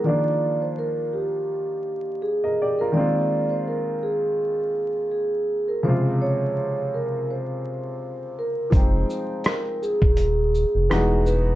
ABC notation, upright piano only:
X:1
M:4/4
L:1/16
Q:"Swing 16ths" 1/4=83
K:Fdor
V:1 name="Upright piano"
z12 z [Be] [Gd] [FB]- | [FB] z12 z3 | z16 | z16 |]
V:2 name="Upright piano" clef=bass
[E,F,B,DF]16 | [E,A,B,CF]16 | [C,_D,F,A,F]16 | [F,G,A,CEg]12 [=E,G,^G,=B,^D^F]4 |]